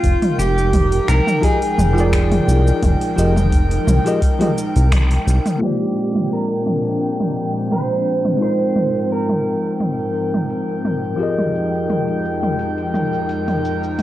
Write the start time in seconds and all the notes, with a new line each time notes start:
Already playing: F4 G5 G6
0.03 F1 F3 G#3 D#4 A#4 G5, kick, open hi-hat, cabasa
0.22 mid tom, open hi-hat
0.38 F1 G4, cabasa
0.58 cabasa
0.73 kick, mid tom, open hi-hat, cabasa
0.92 open hi-hat
1.08 C2 A#4, finger snap, cabasa
1.27 mid tom, cabasa
1.41 F3 F4 G4 G#4 A#4 D#5, kick, open hi-hat, cabasa
1.62 open hi-hat
1.78 F1, mid tom, cabasa
1.93 F3 F4 G5
1.98 G#4 A#4 D5, cabasa
2.13 finger snap, kick, open hi-hat, cabasa
2.32 mid tom, open hi-hat
2.48 C2, cabasa
2.67 cabasa
2.82 F1, kick, mid tom, open hi-hat, cabasa
3.01 open hi-hat
3.16 F1 F3 F4 G4 G#4 A#4 D#5, cabasa
3.36 mid tom, cabasa
3.52 kick, open hi-hat, cabasa
3.71 open hi-hat
3.87 C2, mid tom, cabasa
4.04 F3 F4 G4 G#4 A#4 D#5, open hi-hat, cabasa
4.22 kick, open hi-hat, cabasa
4.39 F3 F4 G4 G#4 A#4 D#5, mid tom, open hi-hat
4.58 cabasa
4.76 C2, open hi-hat, cabasa
4.92 finger snap, kick, mid tom, open hi-hat, cabasa
5.11 open hi-hat
5.27 C2, cabasa
5.46 mid tom, open hi-hat, cabasa
5.58 A#2 F3 G#3 A#3 C4 D4 F4 G4 G5, mid tom, open hi-hat
5.62 G#3 G4 C5 D5 G5 G6
5.80 open hi-hat
5.98 cabasa
6.15 mid tom, cabasa
6.32 A#4, open hi-hat
6.50 open hi-hat
6.66 mid tom, cabasa
6.86 cabasa
7.01 open hi-hat, cabasa
7.20 mid tom, open hi-hat
7.37 cabasa
7.55 open hi-hat, cabasa
7.71 C5, mid tom, open hi-hat, cabasa
7.90 open hi-hat
8.07 cabasa
8.25 mid tom, cabasa
8.37 G#2 F3 G#3 D#4 F4 A#4, open hi-hat
8.42 A#4 C5, cabasa
8.60 open hi-hat
8.76 mid tom, cabasa
8.95 cabasa
9.10 A#4, open hi-hat, cabasa
9.29 mid tom, open hi-hat
9.46 cabasa
9.65 cabasa
9.80 mid tom, open hi-hat, cabasa
9.99 open hi-hat
10.16 cabasa
10.34 mid tom, open hi-hat, cabasa
10.50 open hi-hat, cabasa
10.69 open hi-hat
10.85 mid tom, cabasa
11.04 cabasa
11.16 F2 F3 G#3 D#4 F4 G4 G5, open hi-hat
11.20 G#4 A#4 D#5, cabasa
11.38 mid tom, open hi-hat
11.55 cabasa
11.74 cabasa
11.90 mid tom, open hi-hat, cabasa
12.08 open hi-hat
12.25 cabasa
12.43 mid tom, cabasa
12.59 open hi-hat, cabasa
12.78 open hi-hat
12.94 mid tom, cabasa
13.13 open hi-hat, cabasa
13.29 open hi-hat, cabasa
13.48 mid tom, open hi-hat
13.65 cabasa
13.83 cabasa
13.99 mid tom, open hi-hat